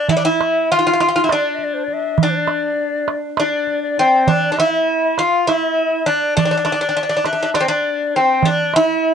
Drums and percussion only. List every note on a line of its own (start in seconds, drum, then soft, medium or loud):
0.09 darbuka dum medium
0.41 darbuka tek medium
1.01 darbuka tek medium
1.29 darbuka tek medium
1.58 darbuka ka soft
1.88 darbuka ka soft
2.18 darbuka dum medium
2.47 darbuka tek medium
3.08 darbuka tek medium
3.37 darbuka tek medium
3.67 darbuka ka soft
3.98 darbuka ka soft
4.27 darbuka dum medium
4.59 darbuka tek medium
5.18 darbuka tek medium
5.49 darbuka tek medium
6.37 darbuka dum medium
6.66 darbuka tek medium
7.25 darbuka tek soft
7.54 darbuka tek medium
8.43 darbuka dum medium
8.74 darbuka tek medium